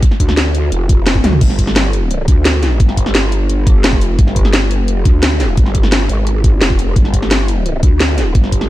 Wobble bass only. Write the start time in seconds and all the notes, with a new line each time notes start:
0.20 D2
0.72 F1
1.24 D2
1.41 G1
2.28 D2
2.80 G1
3.77 F#1
4.04 F1
4.19 G1
4.79 F#1
5.05 D2
5.57 G1
6.10 G#1
6.62 F1
6.96 G1
7.83 D2
8.35 G1